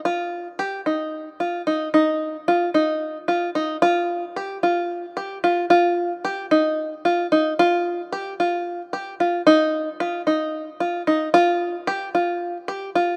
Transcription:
\new Staff \with { instrumentName = "Five-string banjo" } { \time 7/8 \key ees \major \tempo 4 = 112 f'4 g'8 ees'4 f'8 ees'8 | ees'4 f'8 ees'4 f'8 ees'8 | f'4 g'8 f'4 g'8 f'8 | f'4 g'8 ees'4 f'8 ees'8 |
f'4 g'8 f'4 g'8 f'8 | ees'4 f'8 ees'4 f'8 ees'8 | f'4 g'8 f'4 g'8 f'8 | }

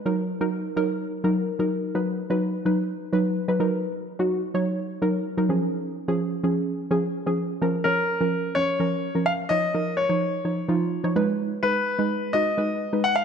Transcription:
<<
  \new Staff \with { instrumentName = "Grand piano" } { \time 4/4 \key ees \minor \tempo 4 = 127 r1 | r1 | r1 | r1 |
r8 bes'4. des''4. f''8 | ees''4 des''2~ des''8 r8 | r8 ces''4. ees''4. ges''16 f''16 | }
  \new Staff \with { instrumentName = "Synth pluck" } { \time 4/4 \key ees \minor <ges ees' bes'>8 r16 <ges ees' bes'>8 r16 <ges ees' bes'>8. r16 <ges ees' bes'>8 r16 <ges ees' bes'>8 r16 | <fis dis' b'>8 r16 <fis dis' b'>8 r16 <fis dis' b'>8. r16 <fis dis' b'>8 r16 <fis dis' b'>16 <ges ees' bes'>8~ | <ges ees' bes'>8 r16 <ges ees' ges'>8 r16 <ges ees' des''>8. r16 <ges ees' bes'>8 r16 <ges ees' bes'>16 <f des' aes'>8~ | <f des' aes'>8 r16 <f des' aes'>8 r16 <f des' aes'>8. r16 <f des' aes'>8 r16 <f des' aes'>8 r16 |
<f des' bes'>16 r16 <f des' des''>8 r16 <f des' bes'>8 r16 <f des' des''>16 r16 <f des' bes'>8 r16 <f des' bes'>8 r16 | <f ees' des''>16 r16 <f ees' bes'>8 r16 <f ees' des''>8 r16 <f ees' des''>16 r16 <f ees' f'>8 r16 <f ees' des''>16 <aes ees' ces''>8~ | <aes ees' ces''>16 r16 <aes ees' ces''>8 r16 <aes ees' ces''>8 r16 <aes ees' ges'>16 r16 <aes ees' ces''>8 r16 <aes ees' ces''>8 r16 | }
>>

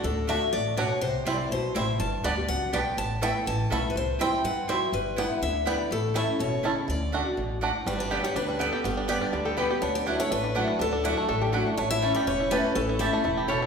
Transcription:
<<
  \new Staff \with { instrumentName = "Steel-string acoustic guitar" } { \time 4/4 \key d \major \tempo 4 = 245 a'4 e''4 d''4 cis''4 | c''4 d''4 c''4 e''4 | a''4 d''4 fis''4 g''4 | a''4 g''4 a''4 e''8. b'16 |
c''4 g''4 fis''4 e''4 | b'4 fis''4 e''4 d''4 | a'4 e''4 cis''4. r8 | d''2. r4 |
b'8 d''4 cis''8 b'4 a'4 | g'4 d''2~ d''8 r8 | cis''8 d''4 cis''8 b'2 | a'4 e''2 r4 |
cis''8 e''4 d''8 cis''4 b'4 | a'4 e''2~ e''8 r8 | }
  \new Staff \with { instrumentName = "Mandolin" } { \time 4/4 \key d \major r4 <a fis' d'' fis''>8 r4. <a fis' d'' fis''>8 r8 | r4 <c' e' c'' g''>8 r4. <c' e' c'' g''>8 r8 | r4 <b g' d'' a''>8 r4. <b g' d'' a''>8 r8 | r4 <cis' a' e'' b''>8 r4. <cis' a' e'' b''>8 r8 |
r4 <c' e' c'' g''>8 r4. <c' e' c'' g''>8 r8 | r4 <b e' b' g''>8 r4. <b e' b' g''>8 r8 | r4 <a e' cis'' a''>8 r4. <a e' cis'' a''>8 r8 | r4 <a fis' d'' fis''>8 r4. <a fis' d'' fis''>8 r8 |
r4 <b g' d'' g''>8 r4. <b g' d'' g''>8 r8 | r4 <b g' d'' g''>8 r4. <b g' d'' g''>8 r8 | r4 <a e' d'' fis''>8 r4. <a e' d'' fis''>8 r8 | r4 <a e' d'' fis''>8 r4. <a e' d'' fis''>8 r8 |
r4 <a e' cis'' a''>8 r4. <a e' cis'' a''>8 r8 | r4 <a e' cis'' a''>8 r4. <a e' cis'' a''>8 r8 | }
  \new Staff \with { instrumentName = "Resonator guitar played with a steel bar" } { \time 4/4 \key d \major r1 | r1 | r1 | r1 |
r1 | r1 | r1 | r1 |
r1 | r2 g'8 a'8 b'8. r16 | r1 | r2 a'8 g'8 fis'8. r16 |
r1 | r2 a'4 cis''8. r16 | }
  \new Staff \with { instrumentName = "Five-string banjo" } { \time 4/4 \key d \major r4 <a d'>8 r4. <a d'>8 r8 | r4 <g c' e'>8 r4. <g c' e'>8 r8 | r4 <g b d'>8 r4. <g b d'>8 r8 | r4 <a b e'>8 r4. <a b e'>8 r8 |
r4 <g c' e'>8 r4. <g c' e'>8 r8 | r4 <g b d'>8 r4. <g b d'>8 r8 | r4 <a cis' e'>8 r4. <a cis' e'>8 r8 | r4 <a d'>8 r4. <a d'>8 r8 |
g8 d'8 g'8 g8 d'8 g8 b8 g'8 | b8 d'8 g'8 d'8 g8 g'8 b8 g'8 | d'4 d'8 a8 d'8 d'8 d'8 d'8 | d'8 d'8 d'8 a8 d'8 d'8 d'8 d'8 |
a8 e'8 a8 g'8 cis'8 e'8 g'8 cis'8 | cis'8 e'8 g'8 a8 e'8 g'8 cis'8 e'8 | }
  \new Staff \with { instrumentName = "Steel-string acoustic guitar" } { \time 4/4 \key d \major << { r4 <d a d' fis'>4 r2 | r4 <e g c' e'>8 <c' e'>8 r2 | r4 <d g b g'>8 <b g'>8 r2 | r4 <e a b e'>4 r4 <e a b e'>8 <b e'>8 |
r4 <e g c' e'>8 <c' e'>8 r2 | r4 <g b e'>8 <b e'>8 r4 <g b e'>8 <b e'>8 | r4 <e a cis' e'>8 <cis' e'>8 r2 | r4 <d a d' fis'>8 <d' fis'>8 r2 |
r4 <d g b g'>8 <b g'>8 r4 <d g b g'>8 <b g'>8 | r4 <d g b g'>4 r4 <d g b g'>8 <b g'>8 | r4 <fis a d' e'>8 <d' e'>8 r4 <fis a d' e'>4 | r4 <fis a d' e'>4 r4 <fis a d' e'>8 <d' e'>8 |
r4 <e a cis' e'>4 r4 <e a cis' e'>8 <cis' e'>8 | r4 <e a cis' e'>8 <cis' e'>8 r2 | } \\ { d2 a,4 b,4 | c2 b,4 a,4 | g,2 fis,4 g,4 | a,2 e2 |
c2 e4 fis4 | g2 d2 | a,2 b,4 cis4 | d2 b,4 a,4 |
g,2 d2 | g,2 d2 | d2 a,2 | d2 a,2 |
a,2 e,2 | a,2 a,4 b,4 | } >> }
  \new Staff \with { instrumentName = "Upright bass" } { \clef bass \time 4/4 \key d \major d,2 a,,2 | c,4 c,4 b,,4 a,,4 | g,,4 d,4 cis,4 b,,4 | a,,2 a,,4 b,,4 |
c,2 g,2 | g,,2 d,2 | a,,2 e,,2 | d,2 a,,2 |
g,,2 d,2 | g,,2 d,2 | d,2 a,,2 | d,2 a,,2 |
a,,2 e,,2 | a,,2 e,,2 | }
>>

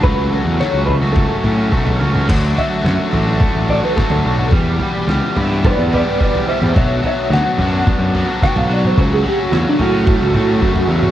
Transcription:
<<
  \new Staff \with { instrumentName = "Clean electric guitar" } { \time 4/4 \key d \major \tempo 4 = 108 b'8 a'8 cis''8 b'8 a'4. r8 | r8 e''2 d''16 b'16 a'4 | r2 <b' d''>8 <b' d''>8 <b' d''>8 <c'' e''>8 | <cis'' e''>8 <cis'' e''>8 fis''4 r4 g''16 f''16 d''16 c''16 |
a'16 gis'16 g'16 fis'16 f'16 d'16 fis'2~ fis'8 | }
  \new Staff \with { instrumentName = "Overdriven electric guitar" } { \time 4/4 \key d \major <cis fis a cis' fis'>8 <fis a cis' fis'>8 <cis fis a cis' fis'>16 <a cis' fis'>8 <a cis' fis'>8. <fis a cis' fis'>16 <a cis' fis'>16 <cis fis a cis' fis'>16 <a cis' fis'>16 <fis a cis' fis'>16 <a cis' fis'>16 | <d a d' fis'>8 <d a d' fis'>16 <a d' fis'>16 <d a d' fis'>8 <d a d' fis'>16 <a d' fis'>8. <d a d' fis'>16 <a d' fis'>16 <d a d' fis'>8 <d a d' fis'>16 <a d' fis'>16 | <e, b, e g b g'>8 <e g b g'>16 <e g b g'>16 <e, b, e g b g'>8 <e g b g'>16 <e g b g'>8. <e g b g'>16 <e g b g'>16 <e, b, e g b g'>8 <e g b g'>16 <e g b g'>16 | <b, fis b d' fis'>8 <fis b d' fis'>16 <b d' fis'>16 <b, fis b d' fis'>8 <fis b d' fis'>16 <b d' fis'>8. <fis b d' fis'>16 <b d' fis'>16 <b, fis b d' fis'>8 <fis b d' fis'>16 <b d' fis'>16 |
<cis fis a cis' fis'>8 <fis a cis' fis'>16 <a cis' fis'>16 <cis fis a cis' fis'>8 <fis a cis' fis'>16 <a cis' fis'>8. <fis a cis' fis'>16 <a cis' fis'>16 <cis fis a cis' fis'>8 <fis a cis' fis'>16 <a cis' fis'>16 | }
  \new Staff \with { instrumentName = "Overdriven electric guitar" } { \clef bass \time 4/4 \key d \major fis4 fis8 a8 fis8 cis'8 a8 cis'8 | fis8 fis8 fis8 d'8 a8 fis8 fis8 fis8 | g8 g8 g8 e'8 b8 g8 g8 g8 | fis8 fis8 fis8 d'4 fis8 fis8 fis8 |
fis8 fis8 fis8 cis'8 a8 fis8 fis8 fis8 | }
  \new Staff \with { instrumentName = "Picked electric bass" } { \clef bass \time 4/4 \key d \major cis,8. e,16 r16 cis,8 cis,8 r16 a,8 b,,8 cis,8 | d,8 r8 fis,16 r16 a,,8 r16 a,,8 r8 d,16 b,,8 | e,8 r8 cis,16 r16 g,8. e,8 r4 e,16 | b,,8 r8 d,16 r16 fis,8 r16 fis,8 r8 b,,16 b,,8 |
cis,8 r8 e,16 r16 a,8. cis,16 a,8 fis,8 e,8 | }
  \new DrumStaff \with { instrumentName = "Drums" } \drummode { \time 4/4 <bd tomfh>8 tomfh8 sn8 tomfh8 <bd tomfh toml>8 <tomfh toml>8 bd16 tomfh8 toml16 | <cymc bd tomfh>8 tomfh8 sn8 tomfh8 <bd tomfh toml>8 tomfh8 <bd sn toml>16 tomfh8 toml16 | <bd tomfh>8 tomfh8 sn8 tomfh8 <bd tomfh toml>8 <tomfh toml>8 bd16 tomfh8 toml16 | <bd tomfh>8 tomfh8 sn8 tomfh8 <bd tomfh toml>8 tomfh8 <bd sn toml>16 tomfh8 toml16 |
<bd tomfh>8 tomfh8 sn8 tomfh8 <bd tomfh toml>8 <tomfh toml>8 bd16 tomfh8 toml16 | }
>>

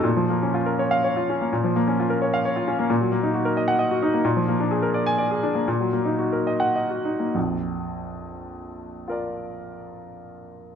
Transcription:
\new Staff \with { instrumentName = "Grand piano" } { \time 6/8 \key ees \dorian \tempo 4. = 81 << { r4. r16 f''8 r8. | r4. r16 f''8 r8. | r4. r16 ges''8 r8. | r4. r16 aes''8 r8. |
r4. r16 ges''8 r8. | r2. | <f' bes' d''>2. | } \\ { bes,16 f16 bes16 des'16 f'16 bes'16 des''8 des''16 f'16 des'16 bes16 | bes,16 f16 bes16 des'16 f'16 bes'16 des''8 des''16 f'16 des'16 bes16 | bes,16 ges16 bes16 ees'16 ges'16 bes'16 ees''8 ees''16 ges'16 ees'16 bes16 | bes,16 f16 bes16 d'16 aes'16 bes'16 d''8 d''16 aes'16 d'16 bes16 |
bes,16 ges16 bes16 ees'16 ges'16 bes'16 ees''8 ees''16 ges'16 ees'16 bes16 | <bes,, f,>2.~ | <bes,, f,>2. | } >> }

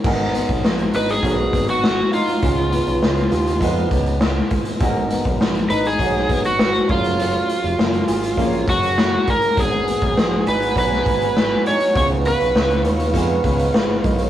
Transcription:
<<
  \new Staff \with { instrumentName = "Analog synth pad" } { \time 4/4 \key gis \dorian \tempo 4 = 101 r1 | r1 | r1 | r1 |
<gis' fis'' gis''>1 | <b' eis'' cis'''>1 | }
  \new Staff \with { instrumentName = "Electric slide guitar" } { \time 4/4 \key gis \dorian r4. b'16 gis'4 fis'8. eis'8~ | eis'2~ eis'8 r4. | r4. b'16 gis'4 fis'8. eis'8~ | eis'2~ eis'8 fis'4 ais'8 |
gis'4. b'8 b'4. cis''8 | cis''8 b'4 r2 r8 | }
  \new Staff \with { instrumentName = "Upright piano" } { \time 4/4 \key gis \dorian << { r1 | r1 | r1 | r1 |
r1 | r2. <dis' gis'>16 <eis' b'>16 <ais' dis''>16 <gis' cis''>16 | } \\ { <b dis' fis' ais'>4. r8 <b dis' fis' ais' b'>4. r8 | <b dis' eis' gis'>4. r8 <b dis' eis' b'>4. r8 | <b dis' fis' gis' ais'>4. r8 <b dis' fis' cis''>4. <cis' eis' gis' ais'>8~ | <cis' eis' gis' ais'>4 r4 <cis' gis' cis'' eis''>4. r8 |
<b dis' fis' gis' ais'>4. r8 <b dis' fis' b'>4. r8 | <b dis' eis' gis'>4. r8 <b dis' eis' gis'>4. r8 | } >> }
  \new Staff \with { instrumentName = "Nylon-string guitar" } { \time 4/4 \key gis \dorian gis,8 b8 fis8 dis'8 fis8 b8 fis8 dis'8 | cis8 b8 gis8 eis'8 gis8 b8 gis8 eis'8 | gis,8 b8 fis8 dis'8 fis8 b8 fis8 fis8 | fis8 eis'8 ais8 gis'8 ais4 ais8 gis'8 |
gis,8 b8 fis8 dis'8 fis8 b8 fis8 dis'8 | cis8 b8 gis8 eis'8 gis8 b8 gis8 eis'8 | }
  \new Staff \with { instrumentName = "Picked electric bass" } { \clef bass \time 4/4 \key gis \dorian gis,,8. b,,16 ais,,8 gis,,8 b,,8 gis,,4 r8 | cis,8. b,,16 cis,8 dis,8 eis,8 cis,4 r8 | gis,,8. b,,16 ais,,8 gis,,8 b,,8 gis,,4 fis,,8~ | fis,,8 r16 eis,,16 fis,,8 gis,,8 ais,,8 fis,,4 r8 |
gis,,8. b,,16 ais,,8 gis,,8 b,,8 gis,,4 r8 | cis,8. b,,16 cis,8 dis,8 eis,8 cis,8 gis,,8 b,,8 | }
  \new DrumStaff \with { instrumentName = "Drums" } \drummode { \time 4/4 <cymc bd>8 hh16 <hh bd>16 sn16 hh16 hh16 hh16 <hh bd>8 <hh bd>16 hh16 sn8 hh16 hh16 | <hh bd>8 hh16 hh16 sn16 hh16 hh16 hh16 <hh bd>8 <hh bd>16 hh16 sn8 <hh bd>16 hh16 | <hh bd>8 hh16 <hh bd>16 sn16 hh16 hh16 hh16 <hh bd>16 sn16 <hh bd>16 hh16 sn16 hh16 <hho bd>16 hh16 | hh16 hh16 hh16 hh16 sn16 hh16 hh16 hh16 <hh bd>16 hh16 <hh bd>16 hh16 sn8 <hh bd>16 hh16 |
<hh bd>8 hh16 <hh bd>16 sn8 hh16 hh16 <hh bd>16 sn16 <hh bd>16 hh16 sn8 hh16 hh16 | <hh bd>8 hh16 hh16 sn16 hh16 hh16 hh16 <hh bd>8 <hh bd>16 hh16 sn8 <hh bd>16 hh16 | }
>>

